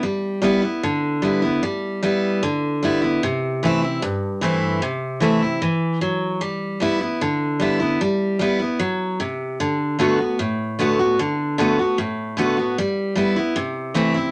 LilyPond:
\new Staff \with { instrumentName = "Steel-string acoustic guitar" } { \time 4/4 \key g \major \tempo 4 = 151 << { r4 <g b e'>8 <b e'>8 r4 <g b e'>8 <b e'>8 | r4 <g b e'>4 r4 <g b e'>8 <b e'>8 | r4 <e a c' e'>8 <c' e'>8 r4 <e a c' e'>4 | r4 <e a c' e'>8 <c' e'>8 r2 |
r4 <g b e'>8 <b e'>8 r4 <g b e'>8 <b e'>8 | r4 <g b e'>8 <b e'>8 r2 | r4 <d a b fis'>8 <b fis'>8 r4 <d a b fis'>8 <b fis'>8 | r4 <d a b fis'>8 <b fis'>8 r4 <d a b fis'>8 <b fis'>8 |
r4 <g b e'>8 <b e'>8 r4 <e a c' e'>8 <c' e'>8 | } \\ { g2 d2 | g2 d2 | c2 g,2 | c2 e4 fis4 |
g2 d2 | g2 fis4 c4 | d2 a,2 | d2 a,2 |
g2 c2 | } >> }